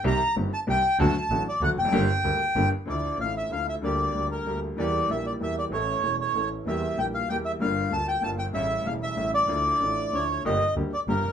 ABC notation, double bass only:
X:1
M:3/4
L:1/8
Q:1/4=190
K:Gm
V:1 name="Double bass" clef=bass
C,, z G,,, z C,, z | D,, z A,,, z D,, F,,, | G,,, z D,, z G,,, z | [K:Dm] D,,2 A,,,2 D,,2 |
D,,2 D,,2 D,,2 | E,,2 B,,,2 E,,2 | A,,,2 E,,,2 A,,,2 | E,,2 B,,,2 E,,2 |
G,,,2 D,,2 G,,,2 | A,,,2 E,,,2 A,,,2 | D,,2 A,,,2 D,,2 | [K:Gm] G,,, z D,, z G,,, F,,, |]